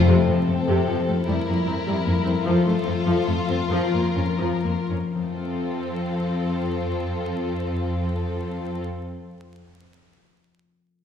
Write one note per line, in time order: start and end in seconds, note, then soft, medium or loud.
0.00 0.27 A3 medium
0.00 0.47 C4 medium
0.00 0.88 A4 medium
0.00 3.59 C5 medium
0.07 0.15 F2 soft
0.07 0.26 C3 soft
0.07 1.27 F3 soft
0.07 1.24 C4 soft
0.07 1.24 A4 soft
0.27 0.36 F2 soft
0.27 0.35 F3 soft
0.27 1.30 A3 soft
0.47 0.56 F2 soft
0.47 0.55 A3 soft
0.47 1.66 C4 soft
0.68 0.76 F2 soft
0.68 0.87 C3 soft
0.68 1.08 F4 soft
0.87 0.97 F2 soft
0.87 0.95 F3 soft
0.87 1.30 A4 soft
1.08 1.16 F2 soft
1.08 1.16 A3 soft
1.08 1.30 F4 soft
1.27 1.36 F2 medium
1.27 2.45 F3 soft
1.27 1.46 G3 soft
1.27 2.45 E4 soft
1.27 2.45 A#4 soft
1.47 1.56 F2 soft
1.47 1.55 A#3 soft
1.47 2.47 A#3 soft
1.67 1.75 F2 soft
1.67 1.75 C4 soft
1.67 2.85 C4 soft
1.87 1.95 F2 soft
1.87 2.05 G3 soft
1.87 2.25 E4 soft
2.06 2.14 F2 soft
2.06 2.14 A#3 soft
2.06 2.47 A#4 soft
2.25 2.34 F2 soft
2.25 2.33 C4 soft
2.25 2.47 E4 soft
2.45 2.53 F2 medium
2.45 2.64 F3 medium
2.45 3.69 F3 soft
2.45 4.90 F4 medium
2.45 3.71 A4 soft
2.65 2.74 F2 soft
2.65 2.73 A3 soft
2.65 3.72 A3 soft
2.85 2.93 F2 soft
2.85 2.94 C4 soft
2.85 3.72 C4 soft
3.06 3.14 F2 medium
3.06 3.25 F3 soft
3.06 3.47 F4 soft
3.27 3.35 F2 soft
3.27 3.35 A3 soft
3.27 3.72 A4 soft
3.49 3.57 F2 soft
3.49 3.57 C4 soft
3.49 4.38 F4 soft
3.70 3.79 F2 soft
3.70 5.14 F3 soft
3.70 3.92 F3 soft
3.70 4.88 A#4 soft
3.93 4.01 F2 soft
3.93 5.17 A#3 soft
3.93 4.01 A#3 soft
4.15 4.24 F2 soft
4.15 5.17 C#4 soft
4.15 4.24 C#4 soft
4.39 4.48 F2 soft
4.39 4.63 F3 soft
4.39 4.89 F4 soft
4.64 4.72 F2 soft
4.64 4.72 A#3 soft
4.64 5.17 A#4 soft
4.90 4.98 F2 soft
4.90 4.98 C#4 soft
4.90 5.35 F4 soft
5.15 8.80 F2 soft
5.15 9.50 F3 soft
5.15 8.80 C4 soft
5.15 8.80 F4 soft
5.15 8.81 A4 soft
5.22 9.54 A3 soft
5.29 9.57 C4 soft
5.36 9.60 F4 soft
5.43 9.64 C5 soft